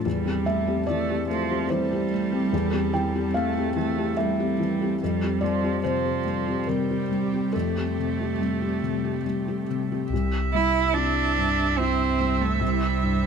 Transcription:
0.05 felt piano E2, cello G3, ambient pad G3 C4 A4
0.25 felt piano C4 G4
0.46 felt piano A3 E5
0.67 felt piano C4 G4
0.87 felt piano E3 D5, cello A3
1.09 felt piano C4 G4
1.30 cello F3, felt piano A3
1.50 felt piano C4 G4
1.70 felt piano E3 C5, cello G3
1.93 felt piano C4 G4
2.12 felt piano A3
2.32 felt piano C4 G4
2.53 felt piano E2
2.73 felt piano C4 G4
2.94 felt piano E3 G5
3.15 felt piano C4 G4
3.34 felt piano A3 F5, cello A3
3.57 felt piano C4 G4
3.76 felt piano E3, cello A3
3.98 felt piano C4 G4
4.17 cello G3, felt piano A3 E5
4.40 felt piano C4 G4
4.59 felt piano E3
4.82 felt piano C4 G4
5.01 felt piano F2, ambient pad G3 C4 G4, cello G3
5.24 felt piano C4 G4
5.41 cello F3, felt piano G3 D5
5.64 felt piano C4 G4
5.83 felt piano C3 C5, cello F3
6.04 felt piano C4 G4
6.26 felt piano G3
6.47 felt piano C4 G4
6.67 felt piano C3 A#4, cello G3
6.90 felt piano C4 G4
7.11 felt piano G3
7.33 felt piano C4 G4
7.53 felt piano F2 A4, cello A3
7.77 felt piano C4 G4
7.99 felt piano C3
8.21 felt piano C4 G4
8.41 felt piano G3
8.62 felt piano C4 G4
8.83 felt piano C3
9.04 felt piano C4 G4
9.26 felt piano G3
9.48 felt piano C4 G4
9.70 felt piano C3
9.92 felt piano C4 G4
10.09 sub bass C2, felt piano C2, ambient pad G3 E4 C5, viola E5
10.54 felt piano G3, cello E4
10.93 felt piano C4 E4, cello D4
11.37 felt piano G2
11.78 cello C4, felt piano C4 E4
12.20 felt piano G3
12.41 cello A3
12.60 felt piano C2, cello G3
13.03 felt piano G2

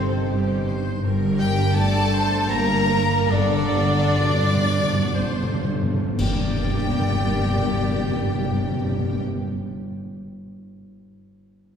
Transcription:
Already playing: double bass section G1, cello section G2, harp G2 D#3 G3 D#4 G4 D#5 G5, french horn section C3, violin section C4 C5, viola section A4, oboe C5, flute section C5
0.12 harp G5
0.29 double bass section G1, cello section G2, viola section G4, harp D#5
0.48 harp G4
0.67 harp D#4, viola section C5
0.85 harp G3
1.03 double bass section G1, harp G2, cello section G2, viola section A#4
1.22 harp D3
1.38 french horn section G3, harp G3, violin section G4 G5, oboe G5, flute section G5
1.58 harp D4
1.73 double bass section G1, cello section G2, french horn section A3, harp G4, violin section A4 A5, viola section D5, flute section A5, oboe A5
1.95 harp D4
2.13 viola section C5, harp D5
2.32 harp G5
2.48 double bass section G1, cello section G2, french horn section A#3, violin section A#4 A#5, viola section A#4, harp D5, oboe A#5, flute section A#5
2.70 harp G4
2.90 harp D4
3.10 harp G3
3.30 double bass section G1, harp G2, timpani G2, cello section G2, french horn section D3, violin section D4 D5, viola section A4, oboe D5, flute section D5
3.38 timpani G2
3.49 timpani G2, harp D3
3.57 timpani G2
3.65 timpani G2
3.74 timpani G2, harp A3
3.82 timpani G2
3.91 timpani G2
3.97 timpani G2, harp C4
4.09 timpani G2
4.18 double bass section G1, timpani G2, cello section G2, harp F#4, viola section D5
4.28 timpani G2
4.38 timpani G2
4.44 timpani G2, harp A4
4.56 timpani G2
4.65 timpani G2, harp C5
4.74 timpani G2
4.84 timpani G2
4.92 timpani G2, harp F#5
5.03 timpani G2
5.12 double bass section G1, timpani G2, cello section G2, harp C5
5.18 timpani G2, viola section C5
5.31 timpani G2
5.42 timpani G2, harp A4
5.53 timpani G2
5.63 timpani G2
5.68 harp C4
5.73 timpani G2
5.83 timpani G2
5.94 timpani G2, harp A3
6.04 timpani G2
6.18 double bass section G1, timpani G2, cello section G2, harp G2, french horn section G3, viola section A#3 G4, violin section G4 G5, oboe D5, flute section D5, concert bass drum, crash
6.24 timpani G2, harp G3
6.31 timpani G2, harp A#3
6.37 timpani G2, harp D4
6.44 timpani G2
6.48 timpani G2, harp G4
6.54 timpani G2, harp D5
6.62 timpani G2
6.67 timpani G2
6.73 timpani G2
6.80 timpani G2
6.86 timpani G2
6.92 timpani G2
6.99 timpani G2
7.06 timpani G2
7.12 timpani G2
7.18 timpani G2
7.24 timpani G2
7.31 timpani G2
7.38 timpani G2
7.44 timpani G2
7.51 timpani G2
7.57 timpani G2
7.63 timpani G2
7.70 timpani G2
7.76 timpani G2
7.82 timpani G2
7.88 timpani G2
7.94 timpani G2
8.01 timpani G2
8.07 timpani G2
8.13 timpani G2
8.20 timpani G2
8.26 timpani G2
8.33 timpani G2
8.39 timpani G2
8.45 timpani G2
8.52 timpani G2
8.58 timpani G2
8.64 timpani G2
8.70 timpani G2
8.77 timpani G2
8.83 timpani G2
8.89 timpani G2
8.95 timpani G2
9.02 timpani G2
9.07 timpani G2
9.14 timpani G2

